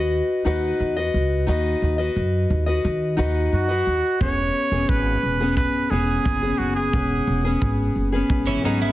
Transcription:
0.00 0.20 D#2 medium
0.00 0.44 F#4 soft
0.00 0.45 B4 soft
0.00 0.46 D#5 medium
0.45 0.74 D#2 medium
0.45 0.96 D#4 medium
0.45 0.97 F#4 medium
0.45 0.97 B4 medium
0.45 0.95 D#5 medium
0.80 1.08 E2 medium
0.96 1.47 F#4 soft
0.96 1.48 B4 soft
0.96 1.48 D#5 medium
1.14 1.42 C#2 medium
1.47 1.76 D#2 medium
1.47 1.98 D#4 medium
1.47 1.99 F#4 medium
1.47 1.98 B4 medium
1.47 1.97 D#5 medium
1.82 2.10 D#2 medium
1.98 2.68 F#4 soft
1.98 2.67 B4 soft
1.98 2.65 D#5 soft
2.16 2.44 F#2 medium
2.50 2.78 D#2 medium
2.66 3.17 F#4 soft
2.66 3.17 B4 soft
2.66 3.18 D#5 medium
2.85 3.20 D#3 medium
3.17 3.46 D#2 medium
3.17 3.69 D#4 medium
3.17 3.69 F#4 medium
3.17 3.69 B4 medium
3.17 3.67 D#5 medium
3.53 3.81 F#2 medium
3.53 4.17 F#4 medium
3.69 4.21 F#4 soft
3.69 4.21 B4 soft
3.69 4.20 D#5 soft
3.87 4.01 D#2 medium
4.20 4.49 E1 medium
4.20 4.72 B3 soft
4.20 4.72 C#4 soft
4.20 4.71 G#4 medium
4.20 4.71 B4 soft
4.20 4.91 C#5 loud
4.20 kick loud
4.71 4.86 E1 medium
4.71 5.42 B3 soft
4.71 5.41 C#4 soft
4.71 5.39 G#4 soft
4.71 5.41 B4 soft
4.89 5.17 G#1 medium
4.89 5.56 B4 medium
4.89 kick loud
5.23 5.65 E1 medium
5.40 5.91 B3 soft
5.40 5.90 C#4 soft
5.40 5.91 G#4 soft
5.40 5.92 B4 soft
5.57 5.92 B4 medium
5.57 kick loud
5.91 6.19 E1 medium
5.91 6.43 B3 medium
5.91 6.42 C#4 medium
5.91 6.60 G#4 medium
5.91 6.41 G#4 medium
5.91 6.42 B4 medium
6.25 6.53 F#1 medium
6.25 kick loud
6.43 6.93 B3 soft
6.43 6.92 C#4 soft
6.43 6.94 G#4 soft
6.43 6.94 B4 soft
6.58 6.87 F#1 medium
6.58 6.75 F#4 medium
6.76 7.74 G#4 medium
6.93 7.21 E1 medium
6.93 7.45 B3 medium
6.93 7.45 C#4 soft
6.93 7.43 G#4 medium
6.93 7.44 B4 medium
6.93 kick loud
7.27 7.55 E1 medium
7.45 8.14 B3 soft
7.45 8.14 C#4 soft
7.45 8.11 G#4 medium
7.45 8.13 B4 soft
7.62 7.90 G#1 medium
7.62 kick medium
7.96 8.24 F#1 medium
8.12 8.63 B3 soft
8.12 8.62 C#4 soft
8.12 8.64 G#4 medium
8.12 8.64 B4 medium
8.30 8.58 G#1 medium
8.30 kick loud
8.47 8.64 E3 medium
8.47 8.63 C#4 medium
8.64 8.92 G#1 medium
8.64 8.81 F#3 medium
8.64 8.92 B3 medium
8.64 8.92 C#4 medium
8.64 8.81 D#4 medium
8.64 8.92 G#4 medium
8.64 8.92 B4 medium
8.82 8.92 G#3 medium
8.82 8.92 E4 medium

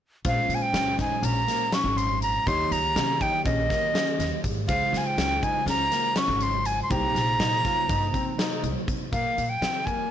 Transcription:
0.25 0.36 A#1 medium
0.25 2.43 A#2 medium
0.25 2.43 G#3 medium
0.25 2.43 C#4 medium
0.25 0.53 F4 medium
0.25 2.43 C5 medium
0.25 0.56 F5 medium
0.25 kick loud
0.25 closed hi-hat medium
0.49 0.70 A#2 medium
0.49 closed hi-hat medium
0.55 0.64 G#5 medium
0.62 0.99 G5 medium
0.73 0.95 C#2 medium
0.73 0.89 C#4 medium
0.73 snare medium
0.73 closed hi-hat medium
0.99 1.13 D#4 medium
0.99 1.26 G#5 medium
0.99 kick medium
0.99 snare soft
0.99 closed hi-hat medium
1.23 1.44 A#1 medium
1.23 1.38 C#4 medium
1.23 1.75 A#5 loud
1.23 closed hi-hat medium
1.48 1.62 A#3 medium
1.48 snare soft
1.48 closed hi-hat medium
1.72 2.01 C#4 medium
1.72 1.99 C#6 medium
1.72 snare loud
1.72 closed hi-hat medium
1.84 2.36 G#1 medium
1.97 2.22 C6 medium
1.97 closed hi-hat medium
2.22 2.49 A#5 medium
2.22 closed hi-hat medium
2.47 2.67 D#2 medium
2.47 4.65 D#3 medium
2.47 4.65 A#3 medium
2.47 2.75 D#4 medium
2.47 4.65 G4 medium
2.47 4.65 C#5 medium
2.47 2.73 C6 loud
2.47 kick loud
2.47 closed hi-hat medium
2.71 2.92 C#2 medium
2.71 3.23 A#5 loud
2.71 closed hi-hat medium
2.96 3.17 C3 medium
2.96 3.10 C#4 medium
2.96 snare loud
2.96 closed hi-hat medium
3.21 3.35 D#4 medium
3.21 3.45 G5 medium
3.21 kick medium
3.21 closed hi-hat medium
3.45 3.66 A#1 medium
3.45 3.59 C#4 medium
3.45 4.40 D#5 medium
3.45 kick loud
3.45 closed hi-hat medium
3.69 3.83 A#3 medium
3.69 kick medium
3.69 snare soft
3.69 closed hi-hat medium
3.94 4.22 C#4 medium
3.94 snare medium
3.94 closed hi-hat medium
4.19 4.30 D#2 medium
4.19 snare soft
4.19 closed hi-hat medium
4.44 4.65 G#2 medium
4.44 kick medium
4.44 closed hi-hat medium
4.68 4.79 C#2 medium
4.68 6.86 C#3 medium
4.68 6.86 G#3 medium
4.68 4.97 F4 medium
4.68 6.87 F4 medium
4.68 6.87 C5 medium
4.68 4.99 F5 medium
4.68 kick loud
4.68 closed hi-hat medium
4.93 5.14 C#3 medium
4.93 snare soft
4.93 closed hi-hat medium
4.97 5.08 G#5 medium
5.06 5.44 G5 medium
5.18 5.38 C#2 medium
5.18 5.32 C#4 medium
5.18 snare loud
5.18 closed hi-hat medium
5.43 5.57 D#4 medium
5.43 5.67 G#5 medium
5.43 kick medium
5.43 closed hi-hat medium
5.66 5.87 C#2 medium
5.66 5.81 C#4 medium
5.66 6.19 A#5 loud
5.66 snare soft
5.66 closed hi-hat medium
5.92 6.06 A#3 medium
5.92 snare soft
5.92 closed hi-hat medium
6.16 6.45 C#4 medium
6.16 6.44 C#6 loud
6.16 snare loud
6.16 closed hi-hat medium
6.28 6.80 G#1 medium
6.40 6.68 C6 medium
6.40 closed hi-hat medium
6.65 6.82 G#5 medium
6.65 closed hi-hat medium
6.83 6.92 C6 medium
6.90 7.11 C2 loud
6.90 9.08 C3 medium
6.90 9.08 A#3 medium
6.90 9.09 D#4 medium
6.90 7.19 G4 medium
6.90 9.09 C5 medium
6.90 8.63 A#5 loud
6.90 kick loud
6.90 closed hi-hat medium
7.15 7.35 A#1 medium
7.15 snare soft
7.15 closed hi-hat medium
7.40 7.60 A#2 medium
7.40 7.54 D#4 medium
7.40 snare loud
7.40 closed hi-hat medium
7.65 7.79 F4 medium
7.65 kick medium
7.65 snare soft
7.65 closed hi-hat medium
7.89 8.10 G2 medium
7.89 8.04 D#4 medium
7.89 kick loud
7.89 closed hi-hat medium
8.14 8.28 C4 medium
8.14 kick medium
8.14 closed hi-hat medium
8.38 8.66 D#4 medium
8.38 snare loud
8.38 closed hi-hat medium
8.63 8.73 C2 medium
8.63 closed hi-hat medium
8.88 9.08 C3 medium
8.88 kick medium
8.88 closed hi-hat medium
9.12 9.23 A#2 medium
9.12 9.40 A#3 medium
9.12 9.51 F5 medium
9.12 kick medium
9.12 closed hi-hat medium
9.38 9.58 A#2 medium
9.38 closed hi-hat medium
9.49 9.87 G5 medium
9.62 9.82 C#3 medium
9.62 9.76 C4 medium
9.62 snare medium
9.62 closed hi-hat medium
9.86 10.11 A#3 medium
9.86 10.11 G#5 medium
9.86 kick medium
9.86 closed hi-hat medium

